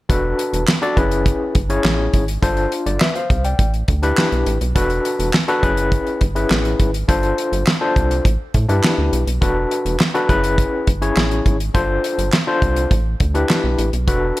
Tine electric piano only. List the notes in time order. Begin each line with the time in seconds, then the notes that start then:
0.09 D4 F#4 A4 B4
0.82 D4 F#4 A4 D5
0.97 C#4 E4 G#4 B4
1.69 C#4 E4 G#4 C#5
2.42 D4 F4 A4 C5
2.86 A4 D5
3.01 B4 E5
3.15 C5 F5
3.45 D5 G5
4.02 D4 E4 G4 B4
4.75 D4 F#4 A4 B4
5.48 D4 F#4 A4 B4
5.62 C#4 E4 G#4 B4
6.35 C#4 E4 G#4 B4
7.08 D4 F4 A4 C5
7.81 D4 F4 A4 C5
8.69 D4 E4 G4 B4
9.41 D4 F#4 A4 B4
10.14 D4 F#4 A4 B4
10.29 C#4 E4 G#4 B4
11.02 C#4 E4 G#4 C#5
11.74 D4 F4 A4 C5
12.47 D4 F4 A4 C5
13.34 D4 E4 G4 B4
14.07 D4 F#4 A4 B4